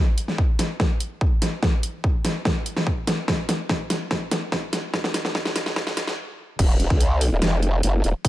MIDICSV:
0, 0, Header, 1, 3, 480
1, 0, Start_track
1, 0, Key_signature, -6, "minor"
1, 0, Tempo, 413793
1, 1886, Time_signature, 4, 2, 24, 8
1, 9609, End_track
2, 0, Start_track
2, 0, Title_t, "Wobble bass"
2, 0, Program_c, 0, 39
2, 7645, Note_on_c, 0, 27, 95
2, 7988, Note_off_c, 0, 27, 0
2, 8007, Note_on_c, 0, 37, 95
2, 8468, Note_off_c, 0, 37, 0
2, 8487, Note_on_c, 0, 27, 99
2, 8587, Note_off_c, 0, 27, 0
2, 8605, Note_on_c, 0, 29, 99
2, 9067, Note_off_c, 0, 29, 0
2, 9085, Note_on_c, 0, 30, 100
2, 9307, Note_off_c, 0, 30, 0
2, 9326, Note_on_c, 0, 27, 102
2, 9428, Note_off_c, 0, 27, 0
2, 9609, End_track
3, 0, Start_track
3, 0, Title_t, "Drums"
3, 205, Note_on_c, 9, 42, 79
3, 321, Note_off_c, 9, 42, 0
3, 327, Note_on_c, 9, 38, 41
3, 443, Note_off_c, 9, 38, 0
3, 445, Note_on_c, 9, 36, 95
3, 561, Note_off_c, 9, 36, 0
3, 685, Note_on_c, 9, 38, 53
3, 685, Note_on_c, 9, 42, 85
3, 801, Note_off_c, 9, 38, 0
3, 801, Note_off_c, 9, 42, 0
3, 925, Note_on_c, 9, 36, 97
3, 925, Note_on_c, 9, 38, 52
3, 1041, Note_off_c, 9, 36, 0
3, 1041, Note_off_c, 9, 38, 0
3, 1165, Note_on_c, 9, 42, 82
3, 1281, Note_off_c, 9, 42, 0
3, 1405, Note_on_c, 9, 36, 96
3, 1521, Note_off_c, 9, 36, 0
3, 1645, Note_on_c, 9, 38, 55
3, 1645, Note_on_c, 9, 42, 81
3, 1761, Note_off_c, 9, 38, 0
3, 1761, Note_off_c, 9, 42, 0
3, 1885, Note_on_c, 9, 36, 93
3, 1886, Note_on_c, 9, 38, 58
3, 2001, Note_off_c, 9, 36, 0
3, 2002, Note_off_c, 9, 38, 0
3, 2125, Note_on_c, 9, 42, 81
3, 2241, Note_off_c, 9, 42, 0
3, 2365, Note_on_c, 9, 36, 95
3, 2481, Note_off_c, 9, 36, 0
3, 2605, Note_on_c, 9, 38, 66
3, 2605, Note_on_c, 9, 42, 86
3, 2721, Note_off_c, 9, 38, 0
3, 2721, Note_off_c, 9, 42, 0
3, 2845, Note_on_c, 9, 36, 97
3, 2845, Note_on_c, 9, 38, 68
3, 2961, Note_off_c, 9, 36, 0
3, 2961, Note_off_c, 9, 38, 0
3, 3086, Note_on_c, 9, 42, 79
3, 3202, Note_off_c, 9, 42, 0
3, 3208, Note_on_c, 9, 38, 59
3, 3324, Note_off_c, 9, 38, 0
3, 3325, Note_on_c, 9, 36, 98
3, 3441, Note_off_c, 9, 36, 0
3, 3566, Note_on_c, 9, 38, 70
3, 3566, Note_on_c, 9, 42, 81
3, 3682, Note_off_c, 9, 38, 0
3, 3682, Note_off_c, 9, 42, 0
3, 3805, Note_on_c, 9, 36, 96
3, 3805, Note_on_c, 9, 38, 75
3, 3921, Note_off_c, 9, 36, 0
3, 3921, Note_off_c, 9, 38, 0
3, 4046, Note_on_c, 9, 38, 75
3, 4046, Note_on_c, 9, 42, 80
3, 4162, Note_off_c, 9, 38, 0
3, 4162, Note_off_c, 9, 42, 0
3, 4285, Note_on_c, 9, 36, 93
3, 4286, Note_on_c, 9, 38, 78
3, 4401, Note_off_c, 9, 36, 0
3, 4402, Note_off_c, 9, 38, 0
3, 4526, Note_on_c, 9, 38, 86
3, 4526, Note_on_c, 9, 42, 87
3, 4642, Note_off_c, 9, 38, 0
3, 4642, Note_off_c, 9, 42, 0
3, 4765, Note_on_c, 9, 36, 100
3, 4766, Note_on_c, 9, 38, 81
3, 4881, Note_off_c, 9, 36, 0
3, 4882, Note_off_c, 9, 38, 0
3, 5005, Note_on_c, 9, 38, 82
3, 5005, Note_on_c, 9, 42, 81
3, 5121, Note_off_c, 9, 38, 0
3, 5121, Note_off_c, 9, 42, 0
3, 5245, Note_on_c, 9, 38, 83
3, 5246, Note_on_c, 9, 36, 97
3, 5361, Note_off_c, 9, 38, 0
3, 5362, Note_off_c, 9, 36, 0
3, 5485, Note_on_c, 9, 38, 90
3, 5485, Note_on_c, 9, 42, 81
3, 5601, Note_off_c, 9, 38, 0
3, 5601, Note_off_c, 9, 42, 0
3, 5725, Note_on_c, 9, 36, 97
3, 5726, Note_on_c, 9, 38, 88
3, 5841, Note_off_c, 9, 36, 0
3, 5842, Note_off_c, 9, 38, 0
3, 5848, Note_on_c, 9, 38, 82
3, 5964, Note_off_c, 9, 38, 0
3, 5965, Note_on_c, 9, 38, 98
3, 5965, Note_on_c, 9, 42, 82
3, 6081, Note_off_c, 9, 38, 0
3, 6081, Note_off_c, 9, 42, 0
3, 6087, Note_on_c, 9, 38, 80
3, 6203, Note_off_c, 9, 38, 0
3, 6205, Note_on_c, 9, 36, 95
3, 6206, Note_on_c, 9, 38, 96
3, 6321, Note_off_c, 9, 36, 0
3, 6322, Note_off_c, 9, 38, 0
3, 6327, Note_on_c, 9, 38, 90
3, 6443, Note_off_c, 9, 38, 0
3, 6445, Note_on_c, 9, 38, 103
3, 6445, Note_on_c, 9, 42, 86
3, 6561, Note_off_c, 9, 38, 0
3, 6561, Note_off_c, 9, 42, 0
3, 6567, Note_on_c, 9, 38, 87
3, 6683, Note_off_c, 9, 38, 0
3, 6685, Note_on_c, 9, 36, 101
3, 6685, Note_on_c, 9, 38, 103
3, 6801, Note_off_c, 9, 36, 0
3, 6801, Note_off_c, 9, 38, 0
3, 6807, Note_on_c, 9, 38, 91
3, 6923, Note_off_c, 9, 38, 0
3, 6925, Note_on_c, 9, 38, 101
3, 6925, Note_on_c, 9, 42, 80
3, 7041, Note_off_c, 9, 38, 0
3, 7041, Note_off_c, 9, 42, 0
3, 7047, Note_on_c, 9, 38, 94
3, 7163, Note_off_c, 9, 38, 0
3, 7645, Note_on_c, 9, 36, 123
3, 7646, Note_on_c, 9, 42, 85
3, 7646, Note_on_c, 9, 49, 100
3, 7761, Note_off_c, 9, 36, 0
3, 7762, Note_off_c, 9, 42, 0
3, 7762, Note_off_c, 9, 49, 0
3, 7885, Note_on_c, 9, 42, 54
3, 8001, Note_off_c, 9, 42, 0
3, 8007, Note_on_c, 9, 36, 110
3, 8123, Note_off_c, 9, 36, 0
3, 8126, Note_on_c, 9, 42, 87
3, 8242, Note_off_c, 9, 42, 0
3, 8365, Note_on_c, 9, 46, 103
3, 8481, Note_off_c, 9, 46, 0
3, 8605, Note_on_c, 9, 38, 123
3, 8605, Note_on_c, 9, 42, 85
3, 8721, Note_off_c, 9, 38, 0
3, 8721, Note_off_c, 9, 42, 0
3, 8846, Note_on_c, 9, 42, 52
3, 8962, Note_off_c, 9, 42, 0
3, 9086, Note_on_c, 9, 42, 84
3, 9202, Note_off_c, 9, 42, 0
3, 9326, Note_on_c, 9, 42, 55
3, 9442, Note_off_c, 9, 42, 0
3, 9565, Note_on_c, 9, 36, 127
3, 9567, Note_on_c, 9, 42, 86
3, 9609, Note_off_c, 9, 36, 0
3, 9609, Note_off_c, 9, 42, 0
3, 9609, End_track
0, 0, End_of_file